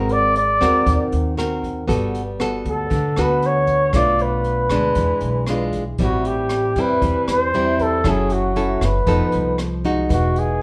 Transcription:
Already playing: G#1 G#3 C4 F#4 A#4
0.09 D5, closed hi-hat
0.35 D5, closed hi-hat
0.61 D#2 C4 F#4 A#4, kick, cross-stick, closed hi-hat
0.86 D#2 D#3, kick, closed hi-hat
1.12 D#2, closed hi-hat
1.37 C4 F#4 A#4, cross-stick, closed hi-hat
1.63 kick, closed hi-hat
1.88 G1 G3 B3 F#4 A4, kick, closed hi-hat
2.15 closed hi-hat
2.40 B3 F#4 A4, cross-stick, closed hi-hat
2.65 D2, kick, closed hi-hat
2.70 A4
2.90 D2 D3, kick, closed hi-hat
3.16 D2 B3 F#4 A4, cross-stick, closed hi-hat
3.21 B4
3.42 C#5, closed hi-hat
3.67 kick, closed hi-hat
3.93 B1 B2 A3 D4 F4 D5, kick, cross-stick, closed hi-hat
4.19 B4, closed hi-hat
4.44 closed hi-hat
4.70 D2 G#3 D4, kick, cross-stick, closed hi-hat
4.95 E2 E3, kick, closed hi-hat
5.20 B1, closed hi-hat
5.47 G#3 D4 F4, cross-stick, closed hi-hat
5.73 kick, closed hi-hat
5.98 A1 A2 G3 C4 E4 F#4, kick, closed hi-hat
6.25 G4, closed hi-hat
6.49 cross-stick, closed hi-hat
6.75 E2 G3 C4 E4, kick, closed hi-hat
6.80 B4
7.02 E2 E3, kick, closed hi-hat
7.27 E2 C5, cross-stick, closed hi-hat
7.53 G3 C4 E4, closed hi-hat
7.79 A4, kick, closed hi-hat
8.04 F#1 F#3 C#4 E4 G#4 A4, kick, cross-stick, closed hi-hat
8.30 F#4, closed hi-hat
8.56 C#4 E4 A4, closed hi-hat
8.81 F#1 B4, kick, cross-stick, closed hi-hat
9.07 F1 F3 B3 D#4 A4, kick, closed hi-hat
9.32 C2, closed hi-hat
9.58 cross-stick, closed hi-hat
9.84 G#3 D#4 F#4, kick, closed hi-hat
10.09 E1 E3, kick, closed hi-hat
10.14 F#4
10.36 G#4, closed hi-hat

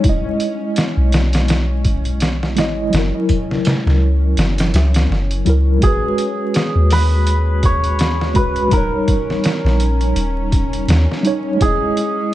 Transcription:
Already playing: C#4
0.00 E1 G#3, kick, closed hi-hat
0.05 E4
0.09 D#5
0.40 closed hi-hat
0.76 snare, closed hi-hat
0.97 B1
1.12 snare, closed hi-hat
1.33 snare, closed hi-hat
1.48 snare, closed hi-hat
1.84 kick, closed hi-hat
2.05 closed hi-hat
2.20 snare, closed hi-hat
2.43 snare
2.56 G#1 G#3 E4, snare, closed hi-hat
2.60 D#5
2.89 F#1 F#3, closed hi-hat
2.94 E4, snare
2.99 A#4
3.29 kick, closed hi-hat
3.51 snare
3.65 snare, closed hi-hat
3.86 C#2, snare
4.37 F#1, snare, closed hi-hat
4.58 snare, closed hi-hat
4.74 C#2, snare, closed hi-hat
4.94 snare, closed hi-hat
5.10 F#1, snare
5.31 closed hi-hat
5.45 C#2 F#3 E4, closed hi-hat
5.49 A#4
5.79 G#1 G#3 C#4, kick, closed hi-hat
5.83 F#4 G#4
5.87 B4
6.18 closed hi-hat
6.54 snare, closed hi-hat
6.75 D#2
6.90 B4, snare, open hi-hat
7.27 closed hi-hat
7.63 C#5, kick, closed hi-hat
7.84 closed hi-hat
7.99 snare, closed hi-hat
8.21 snare
8.34 C#2 G#3 F#4 B4, kick, closed hi-hat
8.39 B4
8.56 closed hi-hat
8.68 D#1 G3, kick, closed hi-hat
8.73 D#4 A#4
8.77 C#5
9.08 kick, closed hi-hat
9.30 snare
9.44 snare, closed hi-hat
9.64 A#1, snare
9.80 closed hi-hat
10.01 closed hi-hat
10.15 D#1, closed hi-hat
10.52 kick, closed hi-hat
10.73 closed hi-hat
10.88 D#2, snare, closed hi-hat
11.11 snare
11.23 G3 D#4, closed hi-hat
11.27 C#5
11.57 E1 G#3
11.61 E4 G#4, kick, closed hi-hat
11.65 D#5
11.97 closed hi-hat

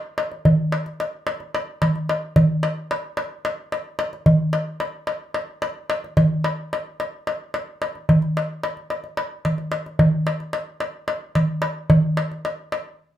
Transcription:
0.18 darbuka tek
0.32 darbuka tek
0.45 darbuka dum
0.72 darbuka tek
0.86 darbuka tek
1.00 darbuka tek
1.27 darbuka tek
1.40 darbuka tek
1.55 darbuka tek
1.82 darbuka tek, darbuka dum
1.96 darbuka tek
2.09 darbuka tek
2.36 darbuka dum
2.63 darbuka tek
2.91 darbuka tek
3.17 darbuka tek
3.45 darbuka tek
3.72 darbuka tek
3.99 darbuka tek
4.13 darbuka tek
4.26 darbuka dum
4.53 darbuka tek
4.80 darbuka tek
5.07 darbuka tek
5.34 darbuka tek
5.62 darbuka tek
5.90 darbuka tek
6.04 darbuka tek
6.17 darbuka dum
6.44 darbuka tek
6.73 darbuka tek
7.00 darbuka tek
7.27 darbuka tek
7.54 darbuka tek
7.82 darbuka tek
7.95 darbuka tek
8.09 darbuka dum
8.22 darbuka tek
8.37 darbuka tek
8.63 darbuka tek
8.77 darbuka tek
8.90 darbuka tek
9.04 darbuka tek
9.17 darbuka tek
9.45 darbuka tek, darbuka dum
9.58 darbuka tek
9.72 darbuka tek
9.86 darbuka tek
9.99 darbuka dum
10.27 darbuka tek
10.40 darbuka tek
10.53 darbuka tek
10.80 darbuka tek
11.08 darbuka tek
11.35 darbuka tek, darbuka dum
11.62 darbuka tek
11.90 darbuka dum
12.17 darbuka tek
12.31 darbuka tek
12.45 darbuka tek
12.72 darbuka tek

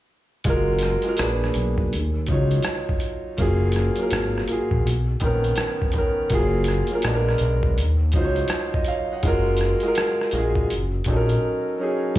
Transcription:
0.44 F#1 G#3 F4 F#4, kick, closed hi-hat
0.49 A#4
0.79 closed hi-hat
0.83 cross-stick
1.02 G#3 F4, closed hi-hat
1.07 F#4 A#4
1.17 A#1 A#3 D4, cross-stick, closed hi-hat
1.21 G#4 B4
1.44 cross-stick
1.54 B1, closed hi-hat
1.78 kick
1.93 D#2, closed hi-hat
2.26 C#2 F#3 D#4 F4, kick, closed hi-hat
2.32 C#5
2.51 closed hi-hat
2.63 cross-stick, closed hi-hat
2.89 kick
3.00 closed hi-hat
3.37 F#1 F#3 A#3 F4, kick, closed hi-hat
3.42 G#4
3.72 closed hi-hat
3.76 cross-stick
3.96 F#3 A#3, closed hi-hat
4.00 F4 A#4
4.11 G#1, cross-stick, closed hi-hat
4.38 cross-stick
4.47 F#3 A#3 F4, closed hi-hat
4.52 G#4
4.71 A#1, kick
4.85 B1, closed hi-hat
5.20 A#1 D#3 B3 C#4, kick, closed hi-hat
5.25 A#4
5.44 closed hi-hat
5.56 cross-stick, closed hi-hat
5.82 kick
5.92 D#3 B3, kick, closed hi-hat
5.96 C#4 A#4
6.30 F#1 F#3 A#3 F4, kick, closed hi-hat
6.35 G#4
6.64 closed hi-hat
6.68 cross-stick
6.87 F#3, closed hi-hat
6.92 A#3 F4 A#4
7.02 A#1 G#3 B3, cross-stick, closed hi-hat
7.07 D4 A4
7.15 A#4
7.29 cross-stick
7.38 B1, closed hi-hat
7.63 kick
7.77 D#2, closed hi-hat
8.12 C#2 F#3 D#4, kick, closed hi-hat
8.16 F4 C5
8.24 C#5
8.36 closed hi-hat
8.48 cross-stick, closed hi-hat
8.74 D#5, kick
8.85 F5, closed hi-hat
8.89 C#5
9.12 D#5 F#5
9.23 F#1 G#3 F4 F#4, kick, closed hi-hat
9.28 A#4
9.57 closed hi-hat
9.61 cross-stick
9.80 G#3, closed hi-hat
9.84 F4 F#4 A#4
9.95 cross-stick, closed hi-hat
10.21 cross-stick
10.31 A#1 G#3 F4, closed hi-hat
10.36 F#4 G#4
10.55 kick
10.70 F#1, closed hi-hat
11.04 A#1 F#3 C#4 D#4, kick, closed hi-hat
11.10 A4
11.17 A#4
11.29 closed hi-hat
11.78 F#3 C#4 D#4
11.83 G#4
12.16 closed hi-hat

